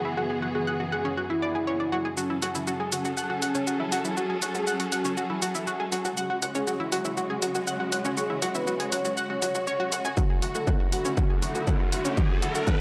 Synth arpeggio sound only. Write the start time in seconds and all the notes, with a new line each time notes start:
0.05 E4
0.17 F#4
0.30 G#4
0.42 F#4
0.55 F#4
0.67 F#5
0.80 F#4
0.92 F#5
1.05 C#4
1.17 F#4
1.30 E4
1.42 D5
1.55 G#4
1.67 C#5
1.80 D5
1.92 F#4
2.05 G#4
2.17 F#4
2.30 E4
2.42 F#4
2.55 E4
2.67 F#4
2.80 G#4
2.92 F#4
3.05 F#4
3.17 F#5
3.30 F#4
3.42 F#5
3.55 C#4
3.67 F#4
3.80 E4
3.92 F#4
4.05 E4
4.17 F#4
4.30 G#4
4.42 F#4
4.55 F#4
4.67 F#5
4.80 F#4
4.92 F#5
5.05 C#4
5.17 F#4
5.30 E4
5.42 F#4
5.55 E4
5.67 F#4
5.80 G#4
5.92 F#4
6.05 F#4
6.17 F#5
6.30 F#4
6.42 F#5
6.55 C#4
6.67 F#4
6.80 E4
6.92 F#4
7.05 E4
7.17 F#4
7.30 G#4
7.42 F#4
7.55 F#4
7.67 F#5
7.80 F#4
7.92 F#5
8.05 C#4
8.17 F#4
8.30 E4
8.42 F#4
8.55 E4
8.67 F#4
8.80 G#4
8.92 F#4
9.05 F#4
9.17 F#5
9.30 F#4
9.42 F#4
9.55 F#4
9.67 C#5
9.80 F#4
9.92 F#5
10.05 G#5
10.17 F#4
10.30 G#4
10.42 F#4
10.55 F#4
10.67 F#5
10.80 F#4
10.92 F#5
11.05 C#4
11.17 F#4
11.30 G#4
11.42 F#4
11.55 F#4
11.67 F#5
11.80 F#4
11.92 F#5
12.05 C#4
12.17 F#4
12.30 G#4
12.42 F#4
12.55 F#4
12.67 F#5